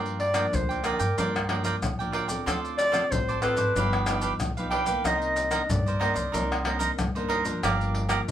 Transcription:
Already playing: G2 F3 A#3 D4 F4 A#4 D5 G5
0.06 pandeiro, maracas
0.20 D5, pandeiro
0.34 F3 A#3 D4 F4 A#4 D5 G5, pandeiro, tamborim, maracas
0.53 D2 D3 C5, pandeiro, maracas, surdo
0.69 A#4 D5 G5, pandeiro, maracas
0.84 F3 A#3 D4 F4 A#4 D5 G5, pandeiro, tamborim, maracas
0.99 G2 A#4 D5 G5, pandeiro, maracas, surdo
1.18 G2 F3 A#3 D4 F4 A#4 D5 G5, pandeiro, maracas, surdo
1.36 pandeiro, tamborim, maracas, surdo
1.49 F3 A#3 D4 F4 A#4 D5 G5, pandeiro, tamborim
1.64 F4 A#4 D5 G5, pandeiro, maracas, surdo
1.82 A1 D3, pandeiro, tamborim, maracas, surdo
1.99 F3 A#3 D4 A#4 D5 G5, pandeiro, maracas
2.12 F4 A#4 D5 G5, pandeiro
2.28 C4 F4 A4 A#4 D5 G5, pandeiro, maracas, surdo
2.46 D2 D3 F4 A4 C5 D5, pandeiro, tamborim, maracas, surdo
2.65 pandeiro, maracas
2.78 D5, pandeiro, maracas
2.92 C4 F4 A4 C5 D5, pandeiro, tamborim, maracas
3.11 A1 A2 C5, pandeiro, maracas, surdo
3.28 A4 C5 D5, pandeiro, maracas
3.42 C4 F4 A4 B4 C5 D5, pandeiro, tamborim, maracas
3.57 G#1 A4 C5 D5, pandeiro, maracas, surdo
3.76 G1 G2 F3 B3 D4 D#4 G4 B4 F5, pandeiro, maracas, surdo
3.93 pandeiro, tamborim, maracas, surdo
4.06 F3 B3 D4 D#4 G4 B4 F5, pandeiro, tamborim, maracas
4.21 D4 G4 B4 F5, pandeiro, maracas, surdo
4.40 B1 D3, pandeiro, tamborim, maracas, surdo
4.57 F3 B3 D#4 G4 B4 F5, pandeiro, maracas
4.70 D4 G4 B4 F5 G5, pandeiro
4.85 D#3 A#3 G4 B4 F5, pandeiro, maracas, surdo
5.04 C2 C3 D#4 A#4 C5 D#5, pandeiro, tamborim, maracas, surdo
5.22 pandeiro, maracas
5.36 pandeiro, maracas
5.51 D#3 A#3 D4 D#4 A#4 C5 D#5, pandeiro, tamborim, maracas
5.69 G2 D5, pandeiro, maracas, surdo
5.86 A#4 C5 D#5, pandeiro, maracas
6.00 D#3 A#3 D4 D#4 A#4 C5 D#5, pandeiro, tamborim
6.14 C2 A#4 C5 D#5, pandeiro, maracas, surdo
6.32 C2 C3 D#3 A#3 D4 D#4 A#4 C5, pandeiro, maracas, surdo
6.52 pandeiro, tamborim, maracas, surdo
6.64 D#3 A#3 D4 D#4 A#4 C5 D#5, pandeiro, tamborim
6.79 D#4 A#4 C5 D#5, pandeiro, maracas, surdo
6.99 D2 G2, pandeiro, tamborim, maracas, surdo
7.15 D#3 A#3 D4 A#4 C5 D#5, pandeiro, maracas
7.28 D#4 A#4 C5 D#5, pandeiro
7.44 F3 A#3 D4 A#4 C5 D#5, pandeiro, maracas, surdo
7.63 G1 G2 G4 A#4 D5 F5, pandeiro, tamborim, maracas, surdo
7.81 pandeiro, maracas
7.95 pandeiro
8.09 F3 A#3 D4 G4 A#4 D5 F5, pandeiro, tamborim, maracas
8.28 D3

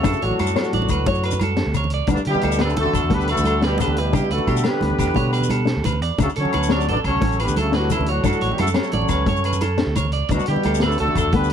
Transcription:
Already playing: C#3 A3 F#4 A4
0.03 F#2 D4 A4, kick, closed hi-hat, high conga, low agogo, shekere
0.13 shekere
0.22 A1 A2 F#3 D4 F#4 C#5, closed hi-hat, low conga
0.31 low conga
0.39 F#2 A4, closed hi-hat, high conga, low agogo
0.46 shekere
0.56 A2 F#3 D4 F#4 C#5, snare, closed hi-hat, low agogo
0.64 shekere
0.73 A1 D5, closed hi-hat, high conga
0.82 low conga
0.89 D2 B4, kick, closed hi-hat, low agogo, shekere
0.98 C#2
1.06 F#2 C#5, kick, closed hi-hat, high conga, low conga
1.14 shekere
1.23 B4, closed hi-hat, low agogo
1.31 low conga, shekere
1.40 A4, closed hi-hat, high conga, low agogo, shekere
1.57 D4, snare, closed hi-hat
1.67 D2
1.74 D2 C#5, closed hi-hat, low agogo, shekere
1.84 low conga
1.90 C#2 D5, closed hi-hat
2.02 low conga
2.07 D2 B3 D4, kick, closed hi-hat, high conga, low agogo, shekere
2.12 G2 D3 D4
2.17 shekere
2.25 D3 E4 G4, closed hi-hat, low conga
2.29 B2 G3 G4
2.35 low conga
2.41 D2 A4, closed hi-hat, high conga, low agogo
2.52 shekere
2.59 B3 D4 B4, snare, closed hi-hat, low agogo
2.63 D3 A3 A4
2.70 shekere
2.76 D2 A3 F#4 A4, closed hi-hat, high conga
2.81 D3
2.86 low conga
2.94 E2 A4, kick, closed hi-hat, low agogo, shekere
3.04 E2
3.10 D2 B3 G4 B4, kick, closed hi-hat, high conga, low conga
3.17 D3, shekere
3.28 A3 F#4 A4 B4, closed hi-hat, low agogo
3.34 D2 D3, low conga, shekere
3.44 A4, closed hi-hat, high conga, low agogo, shekere
3.61 G3 D4 G4 B4, snare, closed hi-hat
3.68 B2
3.78 B3 G4 A4 B4, closed hi-hat, high conga, low agogo, shekere
3.84 D2 D3, low conga
3.97 B2 G3 E4 G4 B4, closed hi-hat
4.13 C#3 D4 G4, kick, closed hi-hat, high conga, low agogo, shekere
4.29 D2 A3 F#4 A4 B4, closed hi-hat, shekere
4.34 D3
4.38 low conga
4.47 B2 G4, kick, closed hi-hat, high conga, low conga, low agogo
4.56 low conga, shekere
4.64 B3 G4 B4, snare, closed hi-hat, low agogo
4.68 D3
4.74 low conga
4.81 D2, closed hi-hat, high conga, low conga
4.90 low conga
4.98 D2 G4, kick, closed hi-hat, low agogo, shekere
5.07 E2
5.14 B2 B3 C#5, kick, closed hi-hat, high conga, shekere
5.32 B4, closed hi-hat, low conga, low agogo, shekere
5.41 low conga, shekere
5.50 A4, closed hi-hat, high conga, low agogo, shekere
5.65 D4, snare, closed hi-hat
5.77 D2
5.84 D2 B4, closed hi-hat, high conga, low conga, low agogo, shekere
5.92 low conga
6.02 E2 D5, closed hi-hat
6.18 D2 A3 D4 F#4 A4, kick, closed hi-hat, high conga, low agogo, shekere
6.23 C#3
6.30 shekere
6.36 D3 C#4 A4 C#5, closed hi-hat, low conga
6.40 F#3
6.45 low conga
6.52 D2 B4, closed hi-hat, high conga, low agogo
6.63 shekere
6.69 C#4 C#5, snare, closed hi-hat, low agogo
6.73 F#3 D4 A4 D5
6.81 shekere
6.88 A1 F#3 D4 A4 B4 D5, closed hi-hat
6.97 low conga
7.04 C#2 F#3 C#4 A4 C#5, kick, closed hi-hat, low agogo
7.15 C#2
7.21 A1 C#4, kick, closed hi-hat, high conga, low conga
7.32 shekere
7.40 B3 G4 B4, closed hi-hat, low agogo
7.45 D2 D3, low conga, shekere
7.56 A3 F#4 A4, closed hi-hat, high conga, low agogo, shekere
7.61 C#3
7.72 F#3 D4 F#4 B4, snare, closed hi-hat
7.78 A2
7.90 E3 C#4 E4 A4, closed hi-hat, high conga, low agogo, shekere
7.95 G2
8.00 D2, low conga
8.06 F#3 D4 F#4 C#5, closed hi-hat
8.13 A2
8.17 low conga
8.24 F#2 D4 A4, kick, closed hi-hat, high conga, low agogo, shekere
8.33 shekere
8.41 A1 C#5, closed hi-hat, low conga
8.50 G3 E4 G4, low conga
8.56 F#2 B2 F#4 A4, closed hi-hat, high conga, low agogo
8.61 C#3 A3 A4
8.67 shekere
8.74 F#3 C#4 A4 C#5, snare, closed hi-hat, low agogo
8.83 shekere
8.92 A1 D5, closed hi-hat, high conga
9.01 low conga
9.09 D2 B4, kick, snare, closed hi-hat, low agogo, shekere
9.19 C#2
9.26 F#2 C#5, muted nylon-string guitar stroke, kick, closed hi-hat, high conga, low conga
9.36 shekere
9.44 B4, closed hi-hat, low agogo
9.53 low conga, shekere
9.61 A4, closed hi-hat, high conga, low agogo, shekere
9.78 D4, snare, closed hi-hat
9.87 D2
9.95 D2 C#5, closed hi-hat, high conga, low agogo, shekere
10.05 low conga
10.12 C#2 D5, closed hi-hat
10.22 low conga
10.28 D2 B2 F#3 D4 F#4, kick, closed hi-hat, high conga, low agogo, shekere
10.33 D4
10.39 shekere
10.46 B2 D3 G3 E4 G4, closed hi-hat, low conga
10.56 low conga
10.63 D2 A4, closed hi-hat, high conga, low agogo
10.75 shekere
10.80 B3 D4 B4, snare, closed hi-hat, low agogo
10.84 D3 A3 A4
10.92 shekere
10.98 D2 D3 A3 F#4 A4, closed hi-hat
11.08 low conga
11.15 E2 A4, kick, closed hi-hat, low agogo, shekere
11.27 E2
11.33 D2 D3 B3 G4 B4, kick, closed hi-hat, high conga, low conga
11.44 shekere
11.50 closed hi-hat

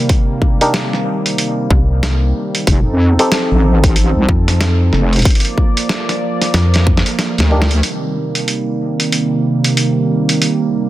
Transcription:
Already playing: C3 D#3 G3 A#3 D4 D#4 G4 A#4
0.09 kick, closed hi-hat
0.42 kick
0.61 D4 D#4 G4 A#4, closed hi-hat
0.74 snare, closed hi-hat
0.93 snare
1.26 closed hi-hat
1.38 closed hi-hat
1.70 C2, kick
2.03 snare, closed hi-hat
2.55 closed hi-hat
2.67 F1 F3 C4 D#4 A4, kick, closed hi-hat
2.87 F2
3.19 C4 D#4 G4 A4, closed hi-hat
3.32 snare, closed hi-hat
3.51 A1
3.84 kick, closed hi-hat
3.96 closed hi-hat
4.16 C2
4.29 F2, kick
4.48 snare, closed hi-hat
4.61 snare, closed hi-hat
4.93 F1, snare
5.13 closed hi-hat
5.16 closed hi-hat
5.19 closed hi-hat
5.22 A#3, kick, closed hi-hat
5.25 F3 D5, closed hi-hat
5.30 closed hi-hat
5.35 closed hi-hat
5.40 closed hi-hat
5.45 closed hi-hat
5.58 kick
5.77 closed hi-hat
5.89 snare, closed hi-hat
6.09 snare, closed hi-hat
6.42 snare, closed hi-hat
6.54 F2, snare, closed hi-hat
6.74 snare, closed hi-hat
6.87 kick
6.97 snare
7.06 closed hi-hat
7.19 snare, closed hi-hat
7.38 D2, snare, closed hi-hat
7.51 D4 D#4 G4 A#4
7.62 snare
7.71 closed hi-hat
7.83 C3 D#3 G3 A#3, closed hi-hat
8.35 closed hi-hat
8.48 closed hi-hat
9.00 closed hi-hat
9.12 closed hi-hat
9.64 closed hi-hat
9.77 closed hi-hat
10.29 closed hi-hat
10.42 closed hi-hat

